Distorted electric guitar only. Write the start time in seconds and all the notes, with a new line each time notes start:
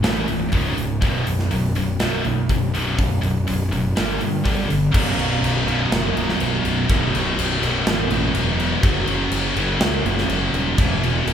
0.03 A2 E3 A3
0.28 A2 E3
0.52 C#2 G#2 C#3
0.77 C#2 G#2
1.01 B1 F#2 B2
1.26 B1 F#2
1.51 B1 F#2
1.76 B1 F#2
2.00 B1 F#2 B2
2.24 B1 F#2
2.50 B1 F#2
2.74 B1 F#2 B2
2.98 B1 F#2
3.21 B1 F#2
3.47 B1 F#2
3.72 B1 F#2
3.96 G2 D3 G3
4.20 G2 D3
4.44 G2 D3 G3
4.69 G2 D3
4.92 B1 F#2 B2
5.66 B1 F#2 B2
6.87 B1 F#2 B2
7.61 B1 F#2 B2
8.82 F#2 C#3 F#3
9.55 F#2 C#3 F#3
10.77 E2 B2 E3